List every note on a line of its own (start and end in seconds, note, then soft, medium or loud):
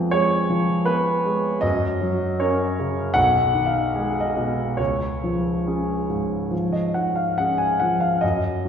0.00 1.66 F2 soft
0.00 0.35 F3 soft
0.00 0.13 G#3 soft
0.00 0.87 B3 soft
0.00 0.86 B4 soft
0.00 0.11 D5 medium
0.11 0.73 G#3 soft
0.11 0.88 C#5 medium
0.50 1.11 F3 soft
0.86 1.22 B3 soft
0.86 1.63 B4 medium
1.25 1.64 G#3 soft
1.61 3.11 F#2 soft
1.61 2.39 D#5 medium
2.01 2.63 F#3 soft
2.40 2.75 C#4 soft
2.40 2.75 A#4 soft
2.40 3.16 C#5 medium
2.79 3.17 C#3 soft
3.14 4.75 B1 medium
3.14 3.67 F#5 medium
3.54 4.20 D#3 soft
3.66 4.21 F5 medium
3.95 4.33 G#3 soft
3.95 4.32 G#4 soft
4.20 4.78 D#5 medium
4.37 4.79 B2 soft
4.77 6.47 C#2 soft
4.77 6.72 C#5 medium
5.24 5.92 F3 soft
5.67 6.05 C#4 soft
5.67 6.06 G#4 soft
6.09 6.78 G#2 soft
6.51 7.21 F3 soft
6.72 6.95 D#5 soft
6.94 7.64 G#2 soft
6.94 7.16 F#5 medium
7.16 7.37 F5 soft
7.38 7.77 C#4 soft
7.38 7.77 G#4 soft
7.38 7.59 F#5 medium
7.58 7.80 G#5 medium
7.80 8.23 F3 soft
7.80 8.01 F#5 medium
8.00 8.22 F5 medium
8.21 8.69 F#2 soft
8.21 8.69 D#5 medium
8.65 8.69 F#3 soft